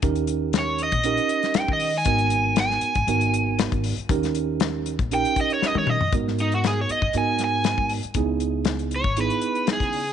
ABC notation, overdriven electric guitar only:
X:1
M:4/4
L:1/16
Q:"Swing 16ths" 1/4=118
K:G#m
V:1 name="Overdriven electric guitar"
z4 c2 d6 =g d2 ^g- | g4 g8 z4 | z8 =g2 d c d c d2 | z2 D F G c d2 g2 g4 z2 |
z6 c2 B4 G4 |]